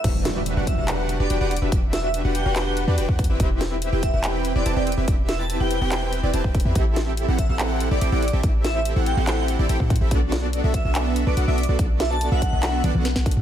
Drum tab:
CC |x-------------------------------|--------------------------------|--------------------------------|--------------------------------|
HH |x---x---x---x---x---x---x---xx--|x---x---x---x---x---x---x---xx--|x---x---x---x---x---x---x---xx--|x---x---x---x---x---x---x---xx--|
CP |----------------x---------------|----------------x---------------|----------------x---------------|----------------x---------------|
SD |----o---------------------------|----o-----------o---------------|----o---------------------------|----o-----------o---------------|
T1 |--------------------------------|--------------------------------|--------------------------------|--------------------------------|
T2 |--------------------------------|--------------------------------|--------------------------------|--------------------------------|
BD |o-----------o-------------------|o-------------------------o-o---|o-----------o-------------------|o-------------------------o-o---|

CC |--------------------------------|--------------------------------|--------------------------------|--------------------------------|
HH |x---x---x---x---x---x---x---xx--|x---x---x---x---x---x---x---xx--|x---x---x---x---x---x---x---xx--|x---x---x---x---x---x---x---xx--|
CP |----------------x---------------|----------------x---------------|----------------x---------------|----------------x---------------|
SD |----o---------------------------|----o-----------o---------------|----o---------------------------|----o-----------o-------o-o-----|
T1 |--------------------------------|--------------------------------|--------------------------------|--------------------o-o---------|
T2 |--------------------------------|--------------------------------|--------------------------------|------------------------------o-|
BD |o-----------o-------------------|o-------------------------o-o---|o-----------o-------------------|o-----------o-------------o-o---|